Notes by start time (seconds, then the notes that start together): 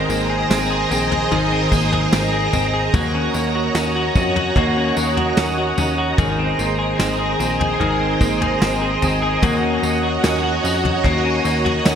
Already playing: D#3 C4 G#4 C5 D#5 A#5
0.09 G#1 A#3, tambourine
0.30 G#4
0.50 G#1 C4, snare, tambourine
0.70 G#4
0.91 A#1 C4, tambourine
1.11 G#4, floor tom
1.31 G#1 D#3 G#4, floor tom
1.52 C4
1.72 G#1 A#3, kick, tambourine
1.92 G#4, floor tom
2.12 G#1 C4, snare, tambourine
2.33 G#4
2.53 G#1 C4, floor tom, tambourine
2.74 G#4
2.94 D#2 A#3 F#4 C#5 D#5, kick, floor tom, tambourine
3.15 C#4
3.34 D#2 A#3, tambourine
3.55 F#4
3.75 D#2 C#4, snare, tambourine
3.96 F#4
4.15 F2 C#4, kick, tambourine
4.36 F#4, floor tom
4.56 D#2 A#3 F#4, kick, floor tom
4.77 C#4
4.97 D#2 A#3, tambourine
5.17 F#4, floor tom
5.37 D#2 C#4, snare, tambourine
5.58 F#4
5.78 D#2 C#4, floor tom, tambourine
5.98 F#4
6.18 G#1 D#3 G#4 C5, kick, floor tom, tambourine
6.39 C4
6.59 G#1 A#3, tambourine
6.79 G#4
6.99 G#1 C4, snare, tambourine
7.19 G#4
7.39 A#1 C4, tambourine
7.60 G#4, floor tom
7.80 G#1 D#3 G#4, floor tom
8.00 C4
8.21 G#1 A#3, kick, tambourine
8.41 G#4, floor tom
8.61 G#1 C4, snare, tambourine
8.81 G#4
9.02 G#1 C4, floor tom, tambourine
9.22 G#4
9.42 D#2 A#3 F#4 C#5, kick, floor tom, tambourine
9.63 C#4
9.83 D#2 A#3, tambourine
10.03 F#4
10.23 D#2 C#4, snare, tambourine
10.43 F#4
10.63 F2 C#4, tambourine
10.84 F#4, floor tom
11.04 D#2 A#3 F#4, kick, floor tom
11.24 C#4
11.45 D#2 A#3, tambourine
11.65 F#4, floor tom
11.85 D#2 C#4, snare, tambourine